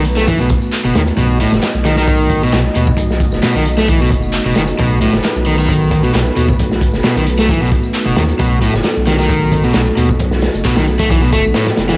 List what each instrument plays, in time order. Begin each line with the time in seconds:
Already playing: sub bass B1, analog synth pad A3 B3 D#4 F#4 B4
0.04 closed hi-hat, ride
0.17 overdriven electric guitar A3, snare, ride, tambourine
0.27 overdriven electric guitar E3, kick, closed hi-hat, tambourine
0.39 overdriven electric guitar B2, tambourine
0.49 kick, closed hi-hat, ride
0.62 tambourine
0.72 clap, closed hi-hat, tambourine
0.84 sub bass F#1, overdriven electric guitar B2, tambourine
0.95 sub bass D#2, overdriven electric guitar D#3, snare, closed hi-hat, ride
1.07 closed hi-hat, tambourine
1.17 sub bass B1, overdriven electric guitar B2, analog synth pad D#5, kick, closed hi-hat, tambourine
1.29 tambourine
1.40 overdriven electric guitar A2, closed hi-hat, ride
1.52 sub bass F#1, snare, tambourine
1.62 snare, clap, closed hi-hat, tambourine
1.74 sub bass B1, tambourine
1.85 overdriven electric guitar D#3, snare, closed hi-hat, ride
1.96 overdriven electric guitar D#3, snare, tambourine
2.08 kick, closed hi-hat, tambourine
2.19 tambourine
2.30 kick, closed hi-hat, ride
2.42 sub bass B1, overdriven electric guitar B2, tambourine
2.53 sub bass B1, overdriven electric guitar B2, snare, clap, closed hi-hat, tambourine
2.65 tambourine
2.75 sub bass D#2, overdriven electric guitar B2, closed hi-hat, ride
2.87 kick, tambourine
2.97 sub bass B1, kick, closed hi-hat, tambourine
3.09 snare, tambourine
3.20 kick, closed hi-hat, ride
3.32 sub bass F#1, snare, tambourine
3.43 overdriven electric guitar B2, snare, clap, closed hi-hat, tambourine
3.55 sub bass B1, overdriven electric guitar D#3, tambourine
3.65 closed hi-hat, ride
3.77 overdriven electric guitar A3, snare, ride, tambourine
3.88 overdriven electric guitar E3, kick, closed hi-hat, tambourine
4.00 overdriven electric guitar B2, tambourine
4.10 sub bass F#1, kick, closed hi-hat, ride
4.22 tambourine
4.33 clap, closed hi-hat, tambourine
4.45 sub bass F#1, overdriven electric guitar B2, tambourine
4.55 sub bass F#1, overdriven electric guitar D#3, snare, closed hi-hat, ride
4.67 closed hi-hat, tambourine
4.78 sub bass B1, overdriven electric guitar B2, analog synth pad B4, kick, closed hi-hat, tambourine
4.90 tambourine
5.01 overdriven electric guitar A2, closed hi-hat, ride
5.13 sub bass F#1, snare, tambourine
5.24 snare, clap, closed hi-hat, tambourine
5.36 sub bass B1, tambourine
5.46 overdriven electric guitar D#3, ride
5.58 overdriven electric guitar D#3, tambourine
5.69 kick, closed hi-hat, tambourine
5.81 tambourine
5.91 kick, closed hi-hat, ride
6.03 sub bass B1, overdriven electric guitar B2, tambourine
6.14 sub bass B1, overdriven electric guitar B2, snare, clap, closed hi-hat, tambourine
6.26 tambourine
6.36 sub bass D#2, overdriven electric guitar B2, closed hi-hat, ride
6.48 kick, tambourine
6.59 sub bass B1, kick, closed hi-hat, tambourine
6.71 snare, tambourine
6.81 kick, closed hi-hat, ride
6.93 sub bass F#1, snare, tambourine
7.04 overdriven electric guitar B2, snare, clap, closed hi-hat, tambourine
7.16 sub bass B1, overdriven electric guitar D#3, tambourine
7.26 closed hi-hat, ride
7.38 overdriven electric guitar A3, snare, ride, tambourine
7.49 overdriven electric guitar E3, kick, closed hi-hat, tambourine
7.61 overdriven electric guitar B2, tambourine
7.72 kick, closed hi-hat, ride
7.83 tambourine
7.94 clap, closed hi-hat, tambourine
8.06 sub bass F#1, overdriven electric guitar B2, tambourine
8.16 sub bass D#2, overdriven electric guitar D#3, snare, closed hi-hat, ride
8.28 closed hi-hat, tambourine
8.39 sub bass B1, overdriven electric guitar B2, analog synth pad A4, kick, closed hi-hat, tambourine
8.51 tambourine
8.61 overdriven electric guitar A2, closed hi-hat, ride
8.73 sub bass F#1, snare, tambourine
8.84 snare, clap, closed hi-hat, tambourine
8.96 sub bass B1, tambourine
9.07 overdriven electric guitar D#3, snare, closed hi-hat, ride
9.18 overdriven electric guitar D#3, snare, tambourine
9.29 kick, closed hi-hat, tambourine
9.41 tambourine
9.52 kick, closed hi-hat, ride
9.64 sub bass B1, overdriven electric guitar B2, tambourine
9.74 sub bass B1, overdriven electric guitar B2, snare, clap, closed hi-hat, tambourine
9.86 tambourine
9.97 sub bass D#2, overdriven electric guitar B2, closed hi-hat, ride
10.09 kick, tambourine
10.19 sub bass B1, kick, closed hi-hat, tambourine
10.31 snare, tambourine
10.42 snare, closed hi-hat, ride
10.54 sub bass F#1, closed hi-hat, tambourine
10.64 overdriven electric guitar B2, kick, clap, closed hi-hat, tambourine
10.76 sub bass B1, overdriven electric guitar D#3, snare, closed hi-hat, tambourine
10.87 closed hi-hat, ride
10.99 overdriven electric guitar A3, kick, closed hi-hat, ride, tambourine
11.10 overdriven electric guitar E3, kick, closed hi-hat, tambourine
11.22 overdriven electric guitar B2, tambourine
11.32 sub bass F#1, overdriven electric guitar A3, kick, closed hi-hat, ride
11.44 sub bass B1, tambourine
11.54 overdriven electric guitar A2, snare, clap, closed hi-hat, tambourine
11.66 snare, closed hi-hat, tambourine
11.77 sub bass F#1, snare, closed hi-hat, ride
11.89 overdriven electric guitar E3, snare, closed hi-hat, tambourine